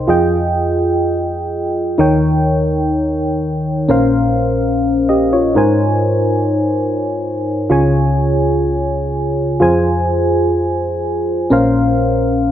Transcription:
Already playing: C2 C3 D#4 A#4 C5 G5
0.08 F2 F4 G#4 D#5 G5
1.98 D#2 D#3 D#4 A#4 C#5 G5
3.89 A#1 A#2 C#4 A#4 C5 F5
5.09 G4 D#5
5.33 F4 C#5
5.55 G#2 D#4 A#4 C5 G#5
7.70 C#2 C#3 F4 G#4 C#5 G#5
9.60 F2 F4 G#4 C5 G#5
11.50 A#1 A#2 C#4 A#4 C5 F5

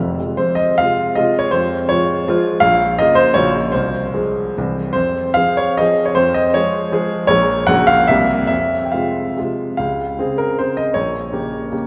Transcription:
Already playing: F1
0.00 F2
0.19 C3 G#3 F4
0.37 F2 C5
0.55 D#5
0.78 C3 G#3 F4 F5
1.15 C3 G#3 F4 D#5
1.39 C#5
1.51 F2 C5
1.89 F3 G#3 F4 C#5
2.28 F3 G#3 F4
2.60 A#1 F5
2.99 C#3 A#3 F4 D#5
3.15 C5
3.34 A#1 C#3 A#3 F#4 C#5
3.72 C2 C5
4.14 F3 G#3 G#4
4.58 C2 E3 C4 G4
4.93 F2 C5
5.34 F3 C4 G#4 F5
5.57 C#5
5.77 F3 C4 G#4 D#5
6.05 C#5
6.15 F2 C5
6.34 D#5
6.54 F3 G#3 G#4 C#5
6.92 F3 G#3 G#4
7.27 A#1 F3 A#3 G#4 C#5
7.67 A#1 C#3 A#3 F#4 F#5
7.87 F5
8.07 C2 C3 A#3 G4 E5
8.47 F2 E5
8.85 G5
8.92 C3 G#3 F4 F5
9.38 C3 G#3 F4
9.77 C#2 F5
10.19 C#3 C4 G#4
10.38 A#4
10.59 C#3 C4 G#4 C5
10.77 D#5
10.94 A#1 C#5
11.32 C#3 A#3 G4
11.72 C#3 A#3 G4

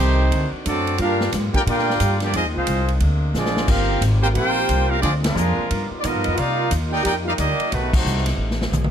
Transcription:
Already playing: C2 D#3 G3 A3 C4 D#4 G4 C5
0.31 D2 D4 F#4, kick, ride
0.52 muted upright bass stroke
0.66 F#2 F#3 A3 C4 D4 F#4 A4 D5, kick, hi-hat pedal, ride
0.87 ride
0.98 G2 D3 A#3 D4 F4 G4 A#4 F5, kick, ride
1.02 G3 F4
1.21 snare
1.32 G#2, kick, snare, hi-hat pedal, ride
1.53 A#3 D4 F4 G4 A#4 D5 G5, kick, ride
1.66 A#2 A#3 D4 F4 G4 A#4 D5 G5, kick, ride
1.79 snare
1.90 snare
2.00 G2, kick, hi-hat pedal, ride
2.20 F3 A#3 D4 G4, snare, ride
2.24 A#3 F4 D5
2.33 F2 D#3 G#3 C4 D#4 F4 G#4 D#5, kick, ride
2.45 D#2
2.55 C2 G#3 C4 D#4 F4 G#4 C5 F5
2.67 C2, kick, hi-hat pedal, ride
2.88 ride
3.00 D2 C3 A#3 D4, kick, ride
3.34 A#1 F3 G#3 C4 D4 F4 G#4 D5, snare, hi-hat pedal
3.46 snare
3.57 snare
3.68 G1 D#3 G3 A#3 C4 F4 G4 A#4 F5, kick, crash
4.01 G#1, kick, hi-hat pedal, ride
4.22 A#3 C4 F4 G4 A#4 C5 G5
4.33 A#1 A#3 C4 F4 G4 A#4 C5 G5, kick, ride
4.69 C2, kick, hi-hat pedal, ride
4.88 A#3 C4 F4 G4 A#4 F5
4.99 D2 D3 F3 G#3 C4 D4 F4 G#4 D5, kick, ride
5.21 C3 F3 G#3 A#3 D4 F4 A#4, snare, ride
5.35 F2, hi-hat pedal
5.58 muted upright bass stroke
5.70 G2 D#3 G3 B3, kick, ride
5.91 muted upright bass stroke
6.01 A#2 F3 B3 D#4 D5 D#5, kick, hi-hat pedal, ride
6.05 B3 F4 A#4
6.14 G2
6.24 F2, ride
6.35 C3 G3 A#3 D#4 F4 A#4 D5 F5, kick, ride
6.40 A#3
6.71 D#2, kick, hi-hat pedal, ride
6.89 A#3 D#4 G4 A#4 D5 G5
7.03 F2 A#3 D#4 G4 A#4 D5 G5, kick, ride
7.25 G3 A#3 D#4 F4 A#4 D5 F5
7.38 D2 G3 A#3 D#4 G4 D5 D#5, kick, hi-hat pedal, ride
7.59 muted upright bass stroke, ride
7.71 B1 B2 C3 D#3 F#3 A3 B3 D#4 F#4 B4, kick, ride
7.92 F#3 A3 C4 D#4 F#4 C5, kick, crash
8.05 C2, hi-hat pedal
8.17 snare
8.26 snare, ride
8.37 A1
8.51 snare
8.61 snare
8.72 B1, hi-hat pedal, mid tom
8.84 mid tom

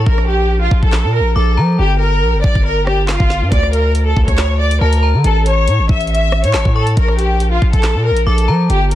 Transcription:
0.06 A#1 A#4, kick
0.18 cross-stick
0.28 G4
0.61 F4
0.71 A#1, kick
0.83 A#1 A4, kick
0.93 snare, clap
1.04 A#2
1.14 A#4
1.20 A#1
1.36 A#1 A4 D6
1.57 F3 A#5
1.79 G1 G4
2.01 A#4
2.22 A#1
2.34 G1
2.44 A#1 D5, kick
2.55 G1, kick
2.66 A#4
2.87 G4, cross-stick
3.09 F4, snare, clap
3.20 G1, kick
3.30 snare
3.42 G2
3.52 D2 D5, kick, closed hi-hat
3.63 cross-stick
3.73 A#4, closed hi-hat
3.95 closed hi-hat
4.07 A4
4.17 D2, kick
4.28 D2 C#5, kick, closed hi-hat
4.38 snare, clap, closed hi-hat
4.60 D5
4.71 closed hi-hat
4.81 D2 A#4 A5
4.93 closed hi-hat
5.03 A#5
5.14 D3
5.24 A1 A4, closed hi-hat
5.45 C#5, closed hi-hat
5.68 A2, closed hi-hat
5.79 A1
5.89 A1 E5, kick
6.01 closed hi-hat
6.07 E5, closed hi-hat
6.15 closed hi-hat
6.32 cross-stick
6.44 A2 C#5, closed hi-hat
6.54 A1 A5, snare, clap
6.65 A2, kick
6.75 A4 C#6
6.87 closed hi-hat
6.97 A#1 A#4, kick, closed hi-hat
7.08 cross-stick
7.19 G4, closed hi-hat
7.40 closed hi-hat
7.51 F4
7.62 A#1, kick
7.73 A#1 A4, kick, closed hi-hat
7.83 snare, clap, closed hi-hat
7.95 A#2
8.05 A#4
8.11 A#1
8.17 closed hi-hat
8.27 A#1 A4 D6
8.38 closed hi-hat
8.48 F3 A#5
8.70 G1 G4, closed hi-hat
8.91 A#4, closed hi-hat

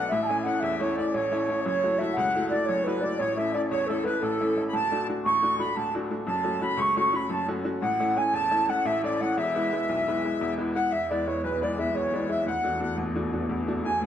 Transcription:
Already playing: F#5
0.08 A1 A2 E5
0.23 G#5 A5
0.29 A3 C#4 E4 G#5
0.40 E5 F#5
0.45 A3 C#4 E4 F#5
0.60 E2 E5
0.79 A3 C#4 E4 C#5
0.95 A3 C#4 E4 D5
1.11 A1 A2 C#5
1.31 A3 C#4 E4
1.48 A3 C#4 E4
1.63 F#1 F#2 C#5
1.83 A3 E4 F#4
1.98 A3 E4 F#4 E5
2.14 C#2 F#5
2.35 A3 E4 F#4
2.49 A3 E4 F#4 D5
2.65 F#1 F#2 C#5
2.84 A3 E4 F#4 B4
3.00 A3 E4 F#4 D5
3.17 A1 A2 C#5
3.36 A3 C#4 E4 E5
3.53 A3 C#4 E4 D5
3.69 E2 C#5
3.86 A3 C#4 E4 A4
4.04 A3 C#4 E4 B4
4.20 A1 A2 A4
4.40 A3 C#4 E4
4.57 A3 C#4 E4
4.69 A5 B5
4.73 D1 D2 A5
4.91 A3 D4 F#4
5.08 A3 D4 F#4
5.25 A1 C#6
5.42 A3 D4 F#4
5.59 A3 D4 F#4 B5
5.76 D1 D2 A5
5.94 A3 D4 F#4
6.11 A3 D4 F#4
6.27 F#1 F#2 A5
6.44 A3 C#4 F#4
6.61 A3 C#4 F#4 B5
6.77 C#2 C#6
6.81 C#6
6.96 A3 C#4 F#4 C#6
7.13 A3 C#4 F#4 B5
7.29 F#1 F#2 A5
7.48 A3 C#4 F#4
7.64 A3 C#4 F#4
7.81 A1 A2 F#5
8.00 A3 C#4 E4
8.16 A3 C#4 E4 G#5
8.33 E2 A5
8.51 A3 C#4 E4
8.68 A3 C#4 E4 F#5
8.85 A1 A2 E5
9.04 A3 C#4 E4 D5
9.21 A3 C#4 E4 F#5
9.37 E1 E2 E5
9.55 G#3 B3 E4
9.72 G#3 B3 E4
9.89 B1
10.08 G#3 B3 E4
10.24 G#3 B3 E4
10.41 E1 E2
10.58 G#3 B3 E4
10.75 G#3 B3 E4 F#5
10.90 E2 E5
11.09 G#3 B3 E4 D5
11.23 G#3 C#5 D5
11.28 B3 E4
11.43 B1 B4
11.61 G#3 B3 E4 D5
11.78 G#3 B3 E4 E5
11.95 E2 C#5
12.13 G#3 B3 E4 D5
12.29 G#3 B3 E4 E5
12.46 D2 F#5
12.63 A3 D4 F#4
12.80 A3 D4 F#4 F#5
12.98 A1
13.15 A3 D4 F#4
13.32 A3 D4 F#4
13.49 D2
13.67 A3 D4 F#4
13.84 A3 D4 F#4 G#5
14.01 A2 F#5

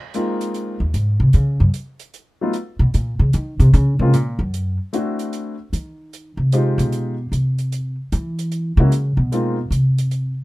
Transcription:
0.14 G#3 A#3 C4 D#4 F4, closed hi-hat
0.41 closed hi-hat
0.54 closed hi-hat
0.80 D#2
0.94 G#2, closed hi-hat
1.20 C3
1.33 C#3, closed hi-hat
1.60 F#2
1.74 closed hi-hat
1.99 closed hi-hat
2.14 closed hi-hat
2.41 F#3 A3 B3 D#4 F4
2.53 closed hi-hat
2.79 B2
2.94 A#2, closed hi-hat
3.19 C#3
3.33 D#3, closed hi-hat
3.59 C3, closed hi-hat
3.73 C#3, closed hi-hat
3.99 C3 G#3 A#3 C4 C#4 F4
4.14 A#2, closed hi-hat
4.39 F#2
4.54 closed hi-hat
4.93 A3 C4 D4 E4 F#4, closed hi-hat
5.19 closed hi-hat
5.33 closed hi-hat
5.73 D#3, closed hi-hat
6.13 closed hi-hat
6.37 C3
6.52 G#3 D#4 F4 G4 C5, closed hi-hat
6.78 B2, closed hi-hat
6.92 closed hi-hat
7.32 C3, closed hi-hat
7.58 closed hi-hat
7.72 closed hi-hat
8.12 E3, closed hi-hat
8.39 closed hi-hat
8.52 closed hi-hat
8.77 C#3 G#3 A#3 C#4 E4 F#4
8.92 closed hi-hat
9.17 B2
9.32 G#3 A#3 C4 D#4 F4, closed hi-hat
9.71 C3, closed hi-hat
9.98 closed hi-hat
10.11 closed hi-hat

